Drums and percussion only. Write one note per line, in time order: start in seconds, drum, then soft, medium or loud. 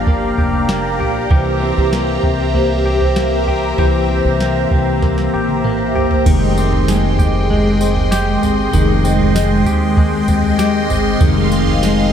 0.07 kick medium
0.07 floor tom medium
0.38 kick medium
0.53 floor tom medium
0.69 snare loud
1.00 floor tom medium
1.31 kick loud
1.31 floor tom loud
1.77 floor tom medium
1.93 snare loud
2.23 kick medium
2.55 floor tom medium
3.01 floor tom medium
3.16 snare loud
3.48 floor tom medium
3.78 floor tom loud
4.25 floor tom medium
4.40 snare loud
4.71 kick medium
4.71 floor tom medium
5.02 kick medium
5.02 snare medium
5.18 snare soft
5.49 high tom medium
5.64 mid tom medium
5.95 floor tom medium
6.11 floor tom medium
6.26 kick loud
6.26 floor tom loud
6.26 crash loud
6.26 tambourine medium
6.58 tambourine medium
6.73 floor tom medium
6.88 snare loud
6.88 tambourine medium
7.19 kick medium
7.19 tambourine medium
7.50 floor tom medium
7.81 tambourine medium
7.96 floor tom medium
8.12 snare loud
8.12 tambourine loud
8.43 floor tom medium
8.43 tambourine medium
8.73 floor tom loud
8.73 tambourine medium
9.05 tambourine medium
9.20 floor tom medium
9.36 snare loud
9.36 tambourine loud
9.66 kick medium
9.66 tambourine medium
9.97 kick loud
9.97 floor tom medium
10.28 kick loud
10.28 tambourine medium
10.44 floor tom medium
10.59 snare loud
10.59 tambourine loud
10.90 floor tom medium
10.90 tambourine medium
11.21 kick loud
11.21 floor tom loud
11.21 tambourine medium
11.52 tambourine medium
11.67 floor tom medium
11.83 snare loud
11.83 tambourine medium